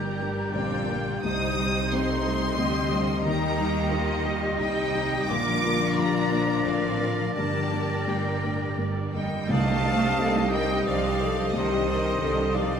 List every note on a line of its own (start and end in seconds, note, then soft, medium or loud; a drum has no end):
0.00 0.52 G1 medium
0.00 0.55 G1 medium
0.00 0.52 G2 medium
0.00 0.55 G2 medium
0.00 1.27 G2 medium
0.00 1.05 D3 soft
0.00 0.21 D#3 medium
0.00 0.22 G3 soft
0.00 0.53 G3 medium
0.00 0.88 G3 soft
0.00 3.21 G3 medium
0.00 1.26 A#3 soft
0.00 0.22 D4 soft
0.00 1.08 D4 medium
0.00 1.26 D4 soft
0.00 0.53 G4 medium
0.00 2.97 G4 medium
0.00 0.22 A#4 soft
0.00 0.70 A#4 medium
0.00 1.24 A#4 medium
0.00 0.20 D5 soft
0.00 0.91 D5 soft
0.00 0.19 A#5 medium
0.00 0.37 A#5 soft
0.00 2.93 G6 medium
0.05 1.92 G4 medium
0.21 0.51 G3 soft
0.21 1.24 D4 medium
0.21 0.52 D4 soft
0.21 0.52 A#4 medium
0.21 0.54 D5 medium
0.38 1.27 A#5 medium
0.54 0.88 G1 medium
0.54 1.25 A#1 medium
0.54 0.88 G2 medium
0.54 1.24 A#2 medium
0.54 0.89 C4 medium
0.54 1.24 F4 medium
0.54 1.27 D5 medium
0.54 1.20 G5 medium
0.71 1.26 A#4 medium
0.88 1.58 G3 medium
0.88 1.21 G3 soft
0.88 1.23 A#3 medium
0.88 1.21 D4 soft
0.88 1.21 A#4 soft
1.06 1.26 D3 medium
1.23 1.57 C2 medium
1.23 2.56 C2 medium
1.23 2.56 C3 medium
1.23 1.57 C3 medium
1.23 3.28 C3 medium
1.23 1.90 G3 medium
1.23 1.57 D#4 medium
1.23 2.56 D#4 medium
1.23 2.56 C5 medium
1.23 5.25 D#5 medium
1.23 5.26 D#5 medium
1.23 1.90 D#6 loud
1.42 3.08 C4 medium
1.57 1.89 G3 soft
1.57 2.92 G3 medium
1.57 1.89 C4 medium
1.57 1.89 D#4 medium
1.57 1.89 G4 medium
1.89 2.24 C2 medium
1.89 2.24 C3 medium
1.89 2.57 A3 medium
1.89 2.23 C4 medium
1.89 2.75 G4 medium
1.89 3.25 C6 loud
2.23 2.55 G3 medium
2.23 2.57 D#4 medium
2.23 2.55 D#4 soft
2.23 2.56 G4 medium
2.23 2.58 D#5 medium
2.43 4.24 G5 medium
2.57 2.91 C2 medium
2.57 3.23 D2 medium
2.57 2.91 C3 medium
2.57 3.24 D3 medium
2.57 2.91 G3 medium
2.57 3.22 G4 medium
2.57 3.24 D#5 medium
2.57 4.08 D#5 medium
2.77 3.74 G4 medium
2.91 3.24 F3 medium
2.91 3.22 G3 medium
2.91 3.41 G3 medium
2.91 3.22 G4 medium
2.91 3.22 D#5 medium
3.09 3.28 C4 medium
3.23 4.58 D#2 medium
3.23 3.57 D#2 medium
3.23 4.58 D#3 medium
3.23 3.57 D#3 medium
3.23 5.32 D#3 medium
3.23 3.56 G3 medium
3.23 5.25 G3 medium
3.23 3.89 D#4 medium
3.23 4.55 G4 medium
3.23 5.24 G4 medium
3.23 3.89 A#4 medium
3.23 4.22 A#5 loud
3.23 7.31 A#6 medium
3.42 5.11 G3 medium
3.56 3.88 G3 medium
3.56 3.88 A#3 medium
3.56 3.88 D#4 medium
3.56 3.91 D#4 medium
3.56 3.88 G4 medium
3.75 4.75 G4 medium
3.89 4.23 D#2 medium
3.89 4.23 D#3 medium
3.89 4.24 A#3 medium
3.89 4.93 D#4 medium
3.89 4.56 F4 medium
3.89 4.57 D#5 medium
4.09 4.41 D#5 medium
4.23 4.57 G3 medium
4.23 4.55 G3 medium
4.23 4.55 D#4 medium
4.23 4.55 G4 medium
4.23 4.58 G5 medium
4.42 5.32 D#5 medium
4.58 5.29 C2 medium
4.58 4.92 D#2 medium
4.58 5.29 C3 medium
4.58 4.92 D#3 medium
4.58 5.27 G3 medium
4.58 4.91 D#4 medium
4.58 5.29 D#4 medium
4.58 5.27 D#5 medium
4.58 5.32 G5 medium
4.58 5.25 G5 loud
4.76 5.32 G4 medium
4.93 5.26 G3 medium
4.93 5.28 D#4 medium
4.93 5.32 D#4 medium
4.93 5.26 D#4 medium
4.93 5.26 G4 medium
5.12 5.32 G3 medium
5.28 6.63 A#1 medium
5.28 5.63 A#1 medium
5.28 6.64 A#2 medium
5.28 5.63 A#2 medium
5.28 7.40 D3 medium
5.28 5.63 A#3 medium
5.28 7.35 D4 medium
5.28 9.16 D4 medium
5.28 7.32 F4 medium
5.28 6.64 F4 medium
5.28 5.98 A#4 medium
5.28 9.16 A#4 medium
5.28 9.12 D5 medium
5.28 5.97 D6 loud
5.47 7.19 F3 medium
5.63 5.94 A#3 medium
5.63 5.98 A#3 medium
5.63 5.94 D4 medium
5.63 5.95 F4 medium
5.97 6.31 A#1 medium
5.97 6.30 A#2 medium
5.97 6.32 G3 medium
5.97 6.84 F4 medium
5.97 6.64 D5 medium
5.97 6.66 A#5 medium
6.16 8.25 A#4 medium
6.31 6.66 F3 medium
6.31 6.62 A#3 soft
6.31 6.63 D4 medium
6.31 6.63 F4 medium
6.31 10.23 D6 medium
6.50 7.40 F5 medium
6.65 7.36 A1 medium
6.65 7.00 A#1 medium
6.65 7.37 A2 medium
6.65 6.99 D3 medium
6.65 7.00 C4 medium
6.65 7.35 F4 medium
6.65 7.34 D5 medium
6.65 7.36 F5 medium
6.85 7.40 F4 soft
7.01 7.33 D4 soft
7.01 7.33 F4 soft
7.01 7.35 A#4 medium
7.01 7.33 A#4 soft
7.20 7.40 F3 soft
7.35 9.25 G1 medium
7.35 7.71 G1 medium
7.35 8.00 G2 medium
7.35 7.72 G2 medium
7.35 9.53 G2 medium
7.35 9.24 D4 medium
7.35 9.24 G4 medium
7.35 9.12 G4 medium
7.35 9.24 A#4 medium
7.35 9.24 D5 medium
7.35 8.06 A5 medium
7.35 8.85 A#6 medium
7.56 9.32 D3 soft
7.72 9.52 G3 soft
7.72 8.04 A#3 soft
7.72 8.05 D4 soft
7.72 8.05 G4 soft
8.07 8.42 G1 soft
8.07 8.42 G2 soft
8.07 8.41 A#2 medium
8.07 8.97 G4 soft
8.07 8.78 G5 medium
8.26 9.52 A#4 soft
8.43 8.79 A2 medium
8.43 8.75 D4 soft
8.43 8.75 G4 soft
8.43 8.75 A#4 soft
8.62 10.69 G5 soft
8.78 9.12 G1 soft
8.78 9.13 G2 soft
8.78 9.14 G2 medium
8.98 10.19 G4 soft
9.13 9.50 F2 medium
9.13 9.46 D3 soft
9.13 9.47 G3 medium
9.13 9.46 A#3 soft
9.13 9.53 A#3 soft
9.13 9.46 G4 soft
9.13 9.52 D#5 medium
9.13 9.46 G5 medium
9.34 9.53 D3 soft
9.49 10.16 C2 medium
9.49 10.11 C2 medium
9.49 10.49 C3 loud
9.49 11.54 C3 medium
9.49 9.66 D#3 medium
9.49 10.53 A3 loud
9.49 9.66 D4 medium
9.49 9.66 D#4 medium
9.49 11.49 G4 medium
9.49 9.66 D5 medium
9.49 11.50 D#5 medium
9.49 10.53 F5 loud
9.49 10.53 A5 loud
9.49 tam-tam medium
9.67 9.84 G3 medium
9.67 11.71 G3 medium
9.67 9.84 D4 medium
9.67 9.85 G4 medium
9.67 9.84 D#5 medium
9.84 10.01 D#3 medium
9.84 11.37 C4 medium
9.84 10.03 D4 medium
9.84 10.02 D#4 medium
9.84 10.02 D5 medium
10.02 10.19 G3 medium
10.02 10.19 D4 medium
10.02 11.21 D#4 medium
10.02 10.19 G4 medium
10.02 10.19 D#5 medium
10.17 10.78 C2 medium
10.17 10.35 D#3 medium
10.17 11.49 C4 medium
10.17 10.35 D4 medium
10.17 11.49 D#4 soft
10.17 10.35 D#4 medium
10.17 11.49 G4 medium
10.17 12.21 G4 medium
10.17 10.51 A4 medium
10.17 10.35 D5 medium
10.37 10.53 G3 medium
10.37 10.53 D4 medium
10.37 10.54 G4 medium
10.37 11.04 C5 medium
10.37 10.54 D#5 medium
10.52 10.70 D#3 medium
10.52 10.87 G3 medium
10.52 10.70 D4 medium
10.52 10.70 D#4 medium
10.52 10.87 A#4 medium
10.52 10.70 D5 medium
10.52 10.89 D#5 medium
10.52 10.85 G5 loud
10.69 10.86 G3 medium
10.69 10.86 D4 medium
10.69 10.87 G4 medium
10.69 10.87 D#5 medium
10.69 12.71 G5 medium
10.86 11.46 C2 medium
10.86 11.02 D#3 medium
10.86 11.54 F3 medium
10.86 11.03 D4 medium
10.86 11.02 D#4 medium
10.86 11.20 C5 medium
10.86 11.54 D5 medium
10.86 11.03 D5 medium
10.86 11.52 F5 loud
11.03 11.20 G3 medium
11.03 11.20 D4 medium
11.03 11.21 G4 medium
11.03 12.38 C5 medium
11.03 11.21 D#5 medium
11.22 11.38 D#3 medium
11.22 11.38 D4 medium
11.22 11.38 D#4 medium
11.22 12.05 D#4 medium
11.22 11.54 A4 medium
11.22 11.38 D5 medium
11.37 11.54 G3 medium
11.37 11.88 C4 medium
11.37 11.54 D4 medium
11.37 11.54 G4 medium
11.37 11.54 D#5 medium
11.52 12.19 C2 medium
11.52 12.13 C2 medium
11.52 12.80 C3 medium
11.52 12.53 D#3 medium
11.52 11.70 D#3 medium
11.52 11.70 D4 medium
11.52 11.70 D#4 medium
11.52 12.80 G4 medium
11.52 11.88 G4 medium
11.52 12.56 C5 medium
11.52 11.70 D5 medium
11.52 12.54 D#5 loud
11.52 12.80 D#5 medium
11.70 11.88 G3 medium
11.70 12.80 G3 medium
11.70 11.88 D4 medium
11.70 11.87 G4 medium
11.70 11.87 D#5 medium
11.86 12.05 D#3 medium
11.86 12.80 C4 medium
11.86 12.04 D4 medium
11.86 12.05 D#4 medium
11.86 12.21 A#4 medium
11.86 12.04 D5 medium
12.03 12.21 G3 medium
12.03 12.21 D4 medium
12.03 12.80 D#4 medium
12.03 12.21 G4 medium
12.03 12.21 D#5 medium
12.19 12.80 C2 medium
12.19 12.37 D#3 medium
12.19 12.80 C4 soft
12.19 12.36 D4 medium
12.19 12.80 D#4 soft
12.19 12.37 D#4 medium
12.19 12.80 G4 medium
12.19 12.55 A4 medium
12.19 12.36 D5 medium
12.36 12.54 G3 medium
12.36 12.54 D4 medium
12.36 12.54 G4 medium
12.36 12.80 C5 medium
12.36 12.54 D#5 medium
12.54 12.72 D#3 medium
12.54 12.80 F3 medium
12.54 12.71 D4 medium
12.54 12.72 D#4 medium
12.54 12.80 G4 medium
12.54 12.80 D5 medium
12.54 12.72 D5 medium
12.54 12.80 F5 medium
12.71 12.80 G3 medium
12.71 12.80 D4 medium
12.71 12.80 G4 medium
12.71 12.80 D#5 medium
12.71 12.80 G5 medium